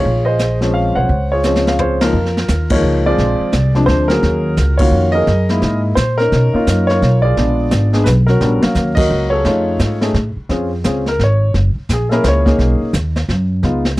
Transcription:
Already playing: grand piano F4 G#4 C#5
0.05 upright bass A#1, brush sweep
0.25 grand piano G#4 C5 D#5
0.39 snare, hi-hat pedal
0.61 grand piano F3 G#3 C4 C#4, snare
0.74 grand piano F5
0.95 upright bass B1, grand piano C5 C#5 F#5
1.09 upright bass C#2, brush sweep, kick
1.32 grand piano F4 G#4 C#5
1.44 grand piano F3 G#3 C4 C#4, snare, hi-hat pedal
1.56 snare
1.67 grand piano F5, snare
1.79 grand piano F4 G#4 C5 C#5, floor tom
2.01 grand piano C#2 F3 G#3 A#3 D#4 F4 A#4, snare, ride
2.13 upright bass F2, brush sweep
2.25 snare
2.37 snare
2.48 upright bass D#2, kick, snare, hi-hat pedal
2.70 grand piano F3 G#3 A#3 D#4 F4 A#4 C#5, kick, ride
2.83 upright bass C#2
3.06 grand piano F3 G#3 C4 F4 G#4 D5
3.18 upright bass A#1, brush sweep, kick, snare
3.40 muted upright bass stroke
3.52 upright bass C2, kick, snare, hi-hat pedal
3.75 grand piano F3 G#3 C4 D4, snare
3.86 upright bass D2, grand piano C5, kick, snare
4.08 grand piano F#3 A#3 C#4 F#4 G#4 A#4, snare
4.23 upright bass D#2, brush sweep, kick, snare
4.57 upright bass C#2, kick, snare, hi-hat pedal
4.78 grand piano D#3 A#3 C#4 F4 F#4 C#5 F5, kick, ride
4.91 upright bass F2
5.12 grand piano G#4 A#4 D#5
5.27 upright bass F#2, brush sweep, kick, snare
5.49 grand piano G#3 A#3 D#4 E4, snare
5.62 upright bass G#2, kick, snare
5.95 upright bass A#2, grand piano C5, kick, snare, hi-hat pedal
6.18 grand piano C#4 D#4 A#4, snare
6.32 upright bass B2, brush sweep, kick, snare
6.53 grand piano A#3 C#4 D#4 F4, muted upright bass stroke
6.67 upright bass F#2, kick, snare, hi-hat pedal
6.87 grand piano F4 A#4 C#5, snare
7.02 upright bass B1, kick, snare
7.22 grand piano F4 G#4 D5
7.36 upright bass A#1, grand piano G#3 B3 D4 F4, brush sweep, kick, snare
7.71 upright bass G#1, kick, snare, hi-hat pedal
7.93 grand piano G#3 B3 D4 G#4, snare
8.04 upright bass B1, grand piano B4, kick, snare, hi-hat pedal
8.27 grand piano C#4 F#4 A#4, snare
8.41 upright bass A#1, grand piano G3 B3 D4 F#4, brush sweep, kick, snare
8.62 grand piano F#3 A#3 C#4 F5, muted upright bass stroke, snare
8.75 upright bass D#2, kick, snare, hi-hat pedal
8.95 grand piano F#4 A#4 D#5, kick, ride
9.10 upright bass C#2
9.30 grand piano G#4 A4 C#5
9.45 upright bass F2, grand piano A3 C#4 D#4 F4, brush sweep, kick, snare
9.79 upright bass G#2, kick, snare, hi-hat pedal
10.01 grand piano A3 C#4 D#4 G#4, snare
10.14 upright bass A2, kick, snare
10.36 muted upright bass stroke
10.49 upright bass F2, grand piano C4 C#4 F4 G#4, brush sweep, kick, snare
10.84 upright bass C#2, grand piano C4 C#4 F4 G#4, kick, snare, hi-hat pedal
11.06 grand piano A#4, snare
11.19 upright bass G#1, kick, snare
11.24 grand piano C#5
11.54 upright bass F#1, brush sweep, kick, snare
11.75 muted upright bass stroke
11.89 upright bass A#1, kick, snare, hi-hat pedal
11.93 grand piano G#4
12.09 grand piano A#3 C#4 E4 G#4 A4 A#4, snare
12.24 upright bass C#2, grand piano C5, kick, snare, hi-hat pedal
12.28 grand piano C#5
12.45 grand piano A#3 C#4 D#4 G#4, kick, snare
12.59 upright bass B1, brush sweep, kick, snare
12.80 muted upright bass stroke
12.93 upright bass D#2, kick, snare, hi-hat pedal
13.16 snare
13.29 upright bass F#2, kick, snare
13.63 upright bass C#2, grand piano G#3 B3 D#4 F4, brush sweep, kick, snare
13.85 snare

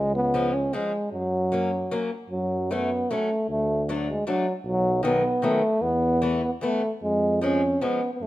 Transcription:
Already playing: tuba C#2, euphonium G#3
0.16 euphonium B3
0.34 steel-string acoustic guitar F3 G#3 C#4
0.54 euphonium C#4
0.73 steel-string acoustic guitar F3 G#3 C#4, euphonium G#3
1.12 tuba F#2, euphonium F#3
1.52 steel-string acoustic guitar F#3 A#3 C#4
1.91 steel-string acoustic guitar F#3 A#3 C#4
2.30 tuba F#2, euphonium F#3
2.71 steel-string acoustic guitar F#3 A3 C#4, euphonium B3
3.11 steel-string acoustic guitar F#3 A3 C#4, euphonium A3
3.48 tuba D2, euphonium A3
3.89 steel-string acoustic guitar F#3 A3 D4
4.09 euphonium G#3
4.27 steel-string acoustic guitar F#3 A3 D4, euphonium F#3
4.65 tuba B1, euphonium F#3
5.03 steel-string acoustic guitar D#3 F#3 B3, euphonium B3
5.42 steel-string acoustic guitar D#3 F#3 B3, euphonium A3
5.81 tuba E2, euphonium B3
6.22 steel-string acoustic guitar E3 A3 B3
6.42 euphonium B3
6.61 steel-string acoustic guitar E3 A3 B3, euphonium A3
7.02 tuba F2, euphonium G#3
7.41 steel-string acoustic guitar F3 G#3 C#4, euphonium C#4
7.81 steel-string acoustic guitar F3 G#3 C#4, euphonium B3
8.14 euphonium B3
8.21 tuba F#2, euphonium A3

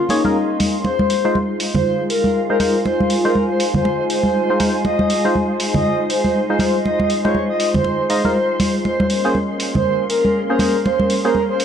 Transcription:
Already playing: string machine A#3 C#4 G#4 C6, ambient pad A#4 F5 C6
0.09 synth stab A#3 C#4 G#4 C#5, soft synth lead D#4, open hi-hat, muted conga
0.24 synth stab A#3 C#4 G#4 A#4, high conga
0.60 open hi-hat, high conga
0.84 string machine G#3 D#4 F4 C6, ambient pad F4, soft synth lead C5, muted conga
0.99 high conga
1.04 ambient pad F5
1.10 open hi-hat
1.23 synth stab G#3 D#4 F4 C5, ambient pad C5
1.35 high conga
1.51 ambient pad G#5
1.60 open hi-hat
1.74 soft synth lead C5, high conga, low conga
2.10 soft synth lead A#4, open hi-hat
2.24 high conga
2.50 synth stab G#3 D#4 F4 C5, soft synth lead A#4
2.60 synth stab G#3 D#4 F4 C5, open hi-hat, high conga
2.85 soft synth lead C5, muted conga
3.00 high conga
3.10 open hi-hat
3.25 synth stab G#3 D#4 F4 C5, soft synth lead A#4
3.35 high conga
3.50 soft synth lead C5
3.60 open hi-hat
3.74 soft synth lead C5, high conga, low conga
3.85 muted conga
4.10 soft synth lead C5, open hi-hat
4.23 high conga
4.50 synth stab G#3 D#4 F4 C5
4.60 synth stab G#3 D#4 F4 C5, open hi-hat, high conga
4.84 ambient pad D#5, soft synth lead D#5, muted conga
4.99 high conga
5.10 open hi-hat
5.25 synth stab G#3 D#4 F4 C5
5.35 high conga
5.60 open hi-hat
5.74 soft synth lead D#5, high conga, low conga
6.10 soft synth lead C5, open hi-hat
6.24 high conga
6.50 synth stab G#3 D#4 F4 C5, soft synth lead C5
6.59 synth stab G#3 D#4 F4 C5, open hi-hat, high conga
6.85 soft synth lead D#5, muted conga
7.00 high conga
7.10 open hi-hat
7.25 synth stab G#3 D#4 F4 C5, soft synth lead C#5, muted conga
7.35 high conga
7.50 soft synth lead D#5
7.60 open hi-hat
7.74 soft synth lead C5, high conga, low conga
7.84 muted conga
8.10 synth stab G#3 D#4 F4 D#5, soft synth lead C5, open hi-hat
8.24 synth stab G#3 D#4 F4 A#4, high conga
8.60 open hi-hat, high conga
8.85 string machine A#3 C#4 G#4, ambient pad A#4, soft synth lead C5, muted conga
9.00 ambient pad F5, high conga
9.10 open hi-hat
9.24 synth stab A#3 C#4 G#4 C5
9.35 high conga
9.60 open hi-hat
9.75 soft synth lead C5, high conga, low conga
10.10 soft synth lead A#4, open hi-hat
10.25 high conga
10.50 synth stab A#3 C#4 G#4 C5, soft synth lead A#4
10.59 synth stab A#3 C#4 G#4 C5, open hi-hat, high conga
10.85 soft synth lead C5, muted conga
11.00 high conga
11.10 open hi-hat
11.25 synth stab A#3 C#4 G#4 C5, soft synth lead A#4
11.35 high conga
11.50 soft synth lead C5
11.60 open hi-hat

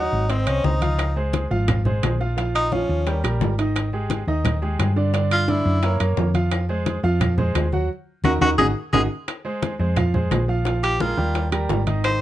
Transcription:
Already playing: grand piano F#3 F#4 F#5, tenor saxophone D#4
0.12 fingered electric bass G#1
0.29 grand piano C4 C5 D#5, tenor saxophone C4, high bongo, high conga, high timbale
0.47 fingered electric bass C2, grand piano C4 C5 D#5, tenor saxophone C#4, high bongo, high conga, high timbale, claves
0.64 fingered electric bass C#2, tenor saxophone D#4, high bongo, low bongo, high conga
0.81 grand piano F3 F4 F5, high bongo, high conga, high timbale
0.99 high bongo, high conga, high timbale, claves
1.16 grand piano G#3 G#4 C5, high conga
1.33 high bongo, high conga, high timbale
1.50 fingered electric bass G#1, grand piano F3 F4 F5, high bongo, high conga
1.68 high bongo, high conga, low conga, high timbale, claves
1.85 grand piano G#3 G#4 C5, high bongo, high conga, low conga
2.03 fingered electric bass A#1, high bongo, low bongo, high conga, high timbale, low timbale, claves
2.20 grand piano F3 F4 F5, high bongo
2.37 grand piano F3 F4 F5, high bongo, high conga, high timbale
2.55 tenor saxophone D#4, high bongo, high conga, high timbale, claves
2.72 grand piano F3 F4 F5, tenor saxophone C#4, high bongo, high conga
2.89 fingered electric bass D#2
3.06 grand piano G3 G4 A#4, high bongo, high conga, high timbale
3.24 fingered electric bass A#1, grand piano G3 G4 A#4, high bongo, high conga, high timbale, claves
3.41 fingered electric bass G#1, high bongo, low bongo, high conga, low timbale
3.58 grand piano D#3 D#4 D#5, high bongo, high timbale
3.76 high bongo, high conga, high timbale, claves
3.93 grand piano G#3 G4 G#4, high conga
4.10 high bongo, high conga, high timbale
4.27 fingered electric bass D#2, grand piano D#3 D#4 D#5, high bongo, high conga
4.45 high bongo, high conga, low conga, high timbale, claves
4.62 grand piano G#3 G4 G#4, high bongo, high conga
4.79 fingered electric bass G2, high bongo, low bongo, high conga, high timbale, claves
4.96 grand piano D3 D4 D5, high bongo
5.13 grand piano D3 D4 D5, high bongo, high conga, high timbale
5.31 tenor saxophone F4, high bongo, high conga, high timbale, claves
5.48 grand piano D3 D4 D5, tenor saxophone E4, high bongo, high conga
5.65 fingered electric bass F#2
5.83 grand piano A#3 A#4 C#5, high bongo, high conga, high timbale
6.00 fingered electric bass F#2, grand piano A#3 A#4 C#5, high bongo, high conga, high timbale, claves
6.17 fingered electric bass F2, high bongo, low bongo, high conga, low timbale
6.34 grand piano F3 F4 F5, high bongo, high conga, high timbale
6.51 high bongo, high conga, high timbale, claves
6.69 grand piano G#3 G#4 C5, high conga
6.86 high bongo, high conga, high timbale
7.03 fingered electric bass F2, grand piano F3 F4 F5, high bongo, high conga
7.21 high bongo, high conga, low conga, high timbale, claves
7.38 grand piano G#3 G#4 C5, high bongo, high conga, low conga
7.55 fingered electric bass D#2, high bongo, low bongo, high conga, high timbale, low timbale, claves
7.72 grand piano F#3 F#4 F#5, high bongo, high conga
8.24 fingered electric bass D#2, grand piano D#4 F#4 A#4, tenor saxophone F#4, low bongo, high conga, high timbale, claves
8.41 fingered electric bass D#2, grand piano D#4 F#4 A#4, tenor saxophone F#4, low bongo, high conga, high timbale, claves
8.58 fingered electric bass G#1, grand piano D#4 F#4 G#4, tenor saxophone G#4, low bongo, high conga, high timbale, claves
8.93 fingered electric bass G#1, grand piano D#4 F#4 G#4, tenor saxophone G#4, low bongo, high conga, high timbale, claves
9.28 high bongo, high conga, high timbale, claves
9.45 grand piano G#3 G#4 C5, high conga
9.62 high bongo, high conga, high timbale, low timbale
9.79 fingered electric bass F2, grand piano G#3 G#4 C5, high conga
9.96 grand piano F3 F4 F5, high bongo, high conga, low conga, high timbale, claves
10.14 grand piano G#3 G#4 C5, high conga, low conga
10.31 fingered electric bass A#1, high bongo, low bongo, high conga, high timbale, low timbale, claves
10.48 grand piano F3 F4 F5, high conga
10.65 grand piano F3 F4 F5, high bongo, high conga, high timbale
10.83 tenor saxophone G4, high bongo, high conga, high timbale, claves
11.00 grand piano G#3 G#4 A#4, tenor saxophone F4, high bongo, high conga, low timbale
11.17 fingered electric bass D#2, grand piano G3 G4 A#4, high bongo
11.35 high bongo, high conga, high timbale
11.52 grand piano G3 G4 A#4, high conga, high timbale, claves
11.69 fingered electric bass G#1, high bongo, low bongo, high conga, low timbale
11.87 grand piano D#3 D#4 D#5, high bongo, high conga, high timbale
12.04 tenor saxophone C5, high bongo, high conga, high timbale, claves

